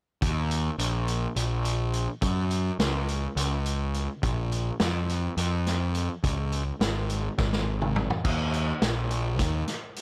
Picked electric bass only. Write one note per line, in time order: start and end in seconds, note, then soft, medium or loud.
0.22 0.69 D#2 medium
0.78 1.25 A#1 medium
1.36 2.07 A#1 medium
2.22 2.69 F#2 medium
2.79 3.26 C#2 medium
3.36 4.07 C#2 medium
4.23 4.70 A#1 medium
4.80 5.27 F2 medium
5.37 6.08 F2 medium
6.24 6.71 C#2 medium
6.80 7.28 G#1 medium
7.39 8.09 G#1 medium
8.25 8.71 D#2 medium
8.82 9.39 A#1 medium
9.39 9.62 D#2 medium